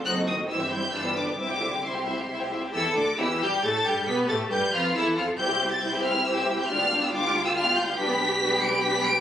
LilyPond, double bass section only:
\new Staff \with { instrumentName = "Double bass section" } { \clef bass \time 3/4 \key c \major \tempo 4 = 137 fis,,4 g,,4 g,,4 | c,4 c,4 c,4 | e,8 d,8 e,8 g,8 a,8 g,8 | b,8 a,8 g,8 f,8 e,8 f,8 |
c,2. | d,2. | \key g \major b,,2. | }